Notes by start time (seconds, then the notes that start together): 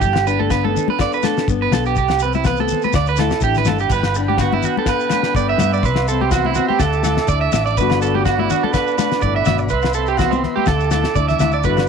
0.01 G1 G2 G4, kick, shekere
0.13 snare, low agogo, shekere
0.27 D4 B4, shekere
0.39 A4, high conga
0.50 D3 B3 B4, kick, snare, low agogo, shekere
0.64 A4, high conga
0.75 D4, low conga, shekere
0.88 B4, high conga
0.98 G2 A4 D5, kick, snare, low agogo, shekere
1.12 B4, shekere
1.23 D4 A4, snare, high conga, low agogo, shekere
1.37 snare, shekere
1.48 G1 D3 B3, kick, shekere
1.62 B4
1.71 B1 A4, snare, high conga, low conga, low agogo, shekere
1.85 G4, shekere
1.96 C2 C3 G4, kick, shekere
2.08 snare, low agogo, shekere
2.19 B4, shekere
2.25 C4
2.33 E4, high conga, shekere
2.44 E3 B3 B4, kick, snare, low agogo, shekere
2.56 A4, high conga, shekere
2.68 shekere
2.72 C4, low conga
2.82 B4, high conga, shekere
2.93 D2 D3 D5, kick, snare, low agogo, shekere
3.06 B4, shekere
3.16 E4 A4, snare, high conga, low agogo, shekere
3.30 snare, shekere
3.41 A1 A3 D4 G4, kick, shekere
3.55 B4, snare, low conga, shekere
3.65 G1 A4, snare, high conga, low conga, low agogo, shekere
3.70 E4
3.79 G4, shekere
3.89 G1 G2 B4 F#5 G5 B5, kick, crash, shekere
4.03 snare, low agogo, shekere
4.15 D4, muted clean electric guitar stroke, shekere
4.28 G4, high conga
4.38 D3 F#4, kick, snare, low agogo, shekere
4.42 B3
4.53 E4, high conga
4.63 D4 F#4, low conga, shekere
4.77 A4, high conga
4.86 G2 A4 B4, kick, snare, low agogo, shekere
5.00 shekere
5.10 B4, snare, high conga, low agogo, shekere
5.14 D4
5.23 snare, shekere
5.34 G1 D3 B3 D5, kick, shekere
5.49 E5
5.58 G2 E5, snare, high conga, low conga, low agogo, shekere
5.73 D5, shekere
5.83 C2 C3 B4 E5 C6, kick, shekere
5.96 snare, low agogo, shekere
6.08 C4 A4, shekere
6.21 G4, high conga
6.31 E3 B3 F#4, kick, snare, low agogo, shekere
6.45 E4, high conga
6.54 F#4, low conga, shekere
6.58 C4
6.68 G4, high conga
6.78 D2 D3 A4 A5 D6, kick, snare, low agogo, shekere
6.93 shekere
7.03 E4 A4, snare, high conga, low agogo, shekere
7.17 snare, shekere
7.28 D2 D5, kick, shekere
7.32 D4
7.41 E5
7.52 A1 E5, snare, high conga, low conga, low agogo, shekere
7.66 D5, shekere
7.77 G1 G2 D3 B3 B4 D5 F#5 B5, kick, shekere
7.81 D4 F#4
7.90 snare, low agogo, shekere
8.02 D4 A4, shekere
8.15 G4, high conga
8.25 D3 B3 F#4, kick, snare, low agogo, shekere
8.39 E4, high conga
8.50 D4 F#4, low conga, shekere
8.63 A4, high conga
8.73 G2 A4 B4, kick, snare, low agogo, shekere
8.87 shekere
8.98 D4 B4, snare, high conga, low agogo, shekere
9.12 snare, shekere
9.21 G1 A2 D5, kick, shekere
9.36 E5
9.45 G1 B2 E5, snare, high conga, low conga, low agogo, shekere
9.58 muted clean electric guitar stroke, shekere
9.69 C2 C3 B4, kick, shekere
9.73 E5 C6
9.82 snare, low agogo, shekere
9.93 A4, shekere
9.98 C4
10.07 G4, shekere
10.17 E3 F#4, kick, snare, low agogo, shekere
10.22 B3
10.31 C4, high conga, shekere
10.43 C4, snare, low conga
10.56 G4, high conga
10.66 D2 D3 A4 A5 D6, kick, snare, low agogo, shekere
10.80 shekere
10.91 E4 A4, snare, high conga, low agogo, shekere
11.04 snare, shekere
11.15 D2 A3 D4 D5, kick, shekere
11.28 E5, snare, low conga, shekere
11.39 D2 E4 E5, snare, high conga, low conga, low agogo, shekere
11.52 D5, shekere
11.63 G1 G2 D3 D4 F#4 B4 D5 B5, muted steel-string acoustic guitar stroke, kick, shekere
11.67 F#5
11.77 snare, low agogo, shekere